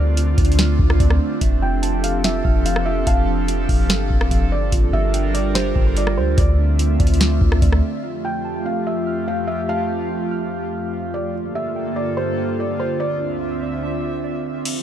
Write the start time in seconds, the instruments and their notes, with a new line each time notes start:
Already playing: 808-style bass D2, analog synth pad D3 A3 C4 D4 F4, synth keys D4 D5, felt piano D5
0.17 synth keys F4, closed hi-hat
0.38 808-style bass D2, synth keys D5, kick, closed hi-hat
0.45 closed hi-hat
0.52 closed hi-hat
0.59 synth keys D4, snare, closed hi-hat
0.79 808-style bass D2, kick
0.90 cross-stick
1.00 808-style bass D2, synth keys D5, kick, closed hi-hat
1.10 cross-stick
1.41 808-style bass F1, analog synth pad F3 G4 A4, synth keys E5, kick, closed hi-hat
1.62 808-style bass F1, synth keys F4, felt piano G5
1.82 synth keys A5, closed hi-hat
2.03 synth keys C4, felt piano F5, closed hi-hat
2.24 synth keys F4, felt piano E5, snare, closed hi-hat
2.45 808-style bass F1, synth keys F6, kick
2.66 felt piano F5, closed hi-hat
2.76 cross-stick
2.85 synth keys F4, felt piano E5
3.07 808-style bass F1, felt piano F5, synth keys A5, kick, closed hi-hat
3.27 synth keys C4
3.48 synth keys F4, closed hi-hat
3.69 808-style bass F1, synth keys F6, kick, open hi-hat
3.90 808-style bass G1, snare, closed hi-hat
4.10 808-style bass F1, kick
4.21 cross-stick
4.31 808-style bass F1, synth keys F5, kick, closed hi-hat
4.52 808-style bass G1, felt piano D5
4.72 808-style bass G1, analog synth pad G3 D4 F4 A#4, synth keys F4, kick, closed hi-hat
4.93 808-style bass G1, synth keys G4, felt piano E5
5.14 synth keys G5, closed hi-hat
5.34 synth keys F4, felt piano D5, closed hi-hat
5.55 synth keys G4, felt piano C5, snare, closed hi-hat
5.76 808-style bass G1, synth keys G5, kick
5.97 synth keys F4, felt piano D5, closed hi-hat
6.07 cross-stick
6.17 808-style bass D2, synth keys G4, felt piano C5
6.38 808-style bass D2, analog synth pad D3 A3 C4 F4 E5, felt piano D5, synth keys D5, kick, closed hi-hat
6.59 synth keys D4
6.79 synth keys F4, closed hi-hat
7.00 808-style bass D2, synth keys D5, kick, closed hi-hat
7.07 closed hi-hat
7.14 closed hi-hat
7.21 synth keys D4, snare, closed hi-hat
7.41 808-style bass D2, kick
7.52 cross-stick
7.62 808-style bass D2, synth keys D5, kick, closed hi-hat
7.72 cross-stick
8.03 analog synth pad F2 F3 A3 F4 G4, synth keys E5
8.24 synth keys F4, felt piano G5
8.45 synth keys A5
8.65 synth keys C4, felt piano F5
8.87 synth keys F4, felt piano E5
9.07 synth keys F6
9.28 felt piano F5
9.47 synth keys F4, felt piano E5
9.69 felt piano F5, synth keys A5
9.89 synth keys C4
10.11 synth keys F4
10.31 synth keys F6
10.93 synth keys F5
11.14 felt piano D5
11.34 analog synth pad G2 D3 A#3 F4 A4, synth keys F4
11.55 synth keys G4, felt piano E5
11.76 synth keys G5
11.96 synth keys F4, felt piano D5
12.17 synth keys G4, felt piano C5
12.38 synth keys G5
12.59 synth keys F4, felt piano D5
12.79 synth keys G4, felt piano C5
13.00 analog synth pad D2 C4 E5, felt piano D5, synth keys D5
13.21 synth keys D4
13.41 synth keys F4
13.62 synth keys D5
13.83 synth keys D4
14.24 synth keys D5
14.65 analog synth pad E3 F3 C4 G4 A4, closed hi-hat, crash